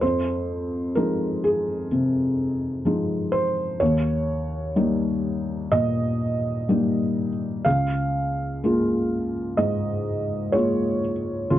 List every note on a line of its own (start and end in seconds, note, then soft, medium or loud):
0.01 0.93 F2 soft
0.01 0.96 C5 medium
0.95 1.88 F3 soft
0.95 1.88 G#3 soft
0.95 1.88 D#4 soft
0.95 1.43 A#4 medium
1.44 3.33 G#4 medium
1.92 3.43 C3 soft
2.85 3.76 F3 soft
2.85 3.77 G#3 soft
2.85 3.77 D#4 soft
3.32 3.80 C5 medium
3.80 4.73 D#2 soft
3.80 5.71 C#5 medium
4.76 5.68 G3 soft
4.76 5.68 A#3 soft
4.76 5.68 D#4 soft
5.72 7.27 A#2 soft
5.72 7.65 D#5 medium
6.69 7.61 G3 soft
6.69 7.61 A#3 soft
6.69 7.62 D#4 soft
7.65 8.60 C#2 soft
7.65 9.57 F5 medium
8.64 9.54 G#3 soft
8.64 9.54 A#3 soft
8.64 9.55 F4 soft
9.57 11.12 G#2 soft
9.57 10.53 D#5 medium
10.52 11.47 G#3 soft
10.52 11.47 A#3 soft
10.52 11.48 F4 soft
10.52 11.01 C#5 medium
11.50 11.59 C#2 soft
11.50 11.59 F4 medium